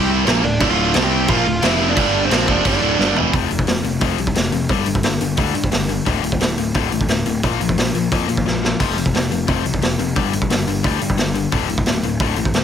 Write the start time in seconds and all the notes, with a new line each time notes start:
Already playing: C2 C3 G3 C4
0.25 A#1 A#2 F3 A#3, snare, crash
0.43 D1 D2 A2 D4 D5
0.60 D1 D2 A2 D3, kick, crash
0.69 F4 F5
0.94 C2 C3 G3 C4 A4 A5, snare, crash
1.03 G4 G5
1.28 A#1 A#2 F3 A#3 F4 F5, kick, crash
1.36 F4 F5
1.46 D1 D2 A2
1.62 F1 F2 C3 F3 E4 E5, snare, crash
1.88 D4 D5
1.97 G1 G2 D3 G3, kick, crash
2.24 C4 C5
2.30 A#1 A#2 F3 A#3, snare, crash
2.47 F1 F2 C3 F3 D4 D5, kick
2.65 G1 G2 D3 G3 D4 D5, kick, crash
2.81 D1 D2 A2 D3
2.98 G1 G2 D3 G3, snare
3.16 E1 E2 B2 E3, floor tom
3.33 F1 F2 C3 F3, kick, open hi-hat
3.50 F1 F2 C3, open hi-hat
3.59 kick
3.67 F1 F2 C3, snare, open hi-hat
3.83 F1 F2 C3, open hi-hat
4.01 F1 F2 C3 F3, kick, open hi-hat
4.18 C2 F2 C3, open hi-hat
4.27 kick
4.35 F1 F2 C3, snare, open hi-hat
4.52 F1 F2 C3, open hi-hat
4.69 G1 G2 D3 G3, kick, open hi-hat
4.86 G1 G2 D3, open hi-hat
4.95 kick
5.03 G1 G2 D3, snare, open hi-hat
5.21 G1 G2 D3, open hi-hat
5.37 D2 G2 D3 G3, kick, open hi-hat
5.54 G2 D3, open hi-hat
5.64 kick
5.71 G1 G2 D3, snare, open hi-hat
5.89 G2 D3, open hi-hat
6.05 D1 D2 A2 D3, kick, open hi-hat
6.23 D1 D2 A2, open hi-hat
6.32 kick
6.39 D1 D2 A2, snare, open hi-hat
6.57 D1 D2 A2, open hi-hat
6.74 D1 D2 A2 D3, kick, open hi-hat
6.92 A1 D2 A2, open hi-hat
7.01 kick
7.08 D1 D2 A2, snare, open hi-hat
7.26 D1 D2 A2, open hi-hat
7.43 A#1 A#2 F3 A#3, kick, open hi-hat
7.60 A#1 A#2 F3, open hi-hat
7.69 kick
7.78 A#1 A#2 F3, snare, open hi-hat
7.93 A#1 A#2 F3, open hi-hat
8.12 F2 A#2 F3 A#3, kick, open hi-hat
8.28 A#2 F3, open hi-hat
8.37 kick
8.45 A#1 A#2 F3, snare
8.63 A#2 F3, snare
8.79 F1 F2 C3 F3, kick, open hi-hat, splash
8.96 F1 F2 C3, open hi-hat
9.06 kick
9.14 F1 F2 C3, snare, open hi-hat
9.31 F1 F2 C3, open hi-hat
9.47 F1 F2 C3 F3, kick, open hi-hat
9.64 C2 F2 C3, open hi-hat
9.74 kick
9.82 F1 F2 C3, snare, open hi-hat
9.99 F1 F2 C3, open hi-hat
10.16 G1 G2 D3 G3, kick, open hi-hat
10.33 G1 G2 D3, open hi-hat
10.42 kick
10.50 G1 G2 D3, snare, open hi-hat
10.67 G1 G2 D3, open hi-hat
10.83 D2 G2 D3 G3, kick, open hi-hat
11.01 G2 D3, open hi-hat
11.10 kick
11.17 G1 G2 D3, snare, open hi-hat
11.34 G2 D3, open hi-hat
11.52 D1 D2 A2 D3, kick, open hi-hat
11.69 D1 D2 A2, open hi-hat
11.78 kick
11.85 D1 D2 A2, snare, open hi-hat
12.03 D1 D2 A2, open hi-hat
12.20 D1 D2 A2 D3, kick, open hi-hat
12.36 A1 D2 A2, open hi-hat
12.45 kick
12.53 D1 D2 A2, snare, open hi-hat